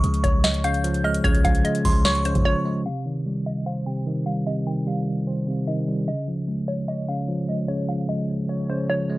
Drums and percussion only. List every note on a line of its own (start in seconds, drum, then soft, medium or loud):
0.04 closed hi-hat medium
0.14 closed hi-hat medium
0.24 kick loud
0.24 closed hi-hat medium
0.44 snare loud
0.44 closed hi-hat medium
0.54 closed hi-hat medium
0.64 closed hi-hat medium
0.74 closed hi-hat medium
0.84 closed hi-hat medium
0.94 closed hi-hat medium
1.14 closed hi-hat medium
1.25 kick loud
1.25 closed hi-hat medium
1.35 closed hi-hat medium
1.45 kick loud
1.45 closed hi-hat medium
1.55 closed hi-hat medium
1.65 closed hi-hat medium
1.75 closed hi-hat medium
1.85 kick loud
1.85 open hi-hat medium
2.05 snare loud
2.05 closed hi-hat medium
2.15 closed hi-hat medium
2.25 closed hi-hat medium
2.35 kick medium
2.35 closed hi-hat medium